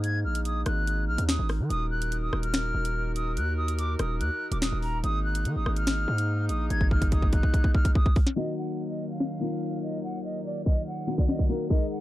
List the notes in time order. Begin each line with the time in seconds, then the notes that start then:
Already playing: G#2 G#3 A#3 D#4
0.04 G#6, closed hi-hat
0.25 A#1 F6
0.35 closed hi-hat
0.45 D#6, closed hi-hat
0.66 G#1 F#6, cross-stick, closed hi-hat
0.87 closed hi-hat
1.08 A#1 F6
1.18 D#2, closed hi-hat
1.29 D#6, finger snap, snare
1.39 G#1
1.49 cross-stick, open hi-hat
1.60 D#3
1.70 D#1 D#3 F#4 A#4 D#6, closed hi-hat
1.91 F#6
2.02 closed hi-hat
2.12 closed hi-hat
2.22 D#6
2.33 D#1, cross-stick
2.43 F6, closed hi-hat
2.54 finger snap, snare
2.74 D#1
2.85 closed hi-hat
3.16 D#6, closed hi-hat
3.37 D#2 F#6, closed hi-hat
3.58 D#6
3.68 closed hi-hat
3.79 D6, closed hi-hat
3.99 D#1 D#6, cross-stick, closed hi-hat
4.20 D#2 F#6, closed hi-hat
4.52 D#1 D6, closed hi-hat
4.62 D#6, finger snap, snare
4.72 D#1
4.82 A#5, open hi-hat
5.04 G#1 G#3 A#3 D#4 D#6, closed hi-hat
5.25 F#6
5.35 closed hi-hat
5.45 D#3, closed hi-hat
5.56 G#1 D#6
5.66 G#1, cross-stick
5.76 F6, closed hi-hat
5.87 finger snap, snare
6.08 G#2
6.18 closed hi-hat
6.49 A#1 D#6, closed hi-hat
6.70 G#1 G#6, closed hi-hat
6.81 kick
6.91 F6, kick
7.02 kick, closed hi-hat
7.12 D#6, kick, closed hi-hat
7.22 kick
7.33 F#6, kick, closed hi-hat
7.43 kick
7.54 kick, closed hi-hat
7.64 kick
7.75 F6, kick
7.85 kick, closed hi-hat
7.95 D#6, kick
8.06 kick
8.16 kick, open hi-hat
8.27 snare
8.36 D#2 D#3 F#3 A#3 F#4 D#5
8.58 F#5
8.68 closed hi-hat
8.79 closed hi-hat
8.89 D#5
9.10 F5, closed hi-hat
9.20 finger snap, snare
9.40 D#3 A#3 F4
9.52 closed hi-hat
9.82 D#5, closed hi-hat
10.04 F#5, closed hi-hat
10.25 D#5
10.35 closed hi-hat
10.45 D5, closed hi-hat
10.66 D#5, kick, closed hi-hat
10.87 F#5, closed hi-hat
11.07 D#3 A#3 F#4 F#5
11.18 D5, kick, closed hi-hat
11.28 D5 D#5, finger snap, snare
11.39 kick
11.49 D#3 A#3 F#4 A#4, closed hi-hat
11.69 G#3 D#4 G#4 A#4 D#5, kick, closed hi-hat
11.91 F#5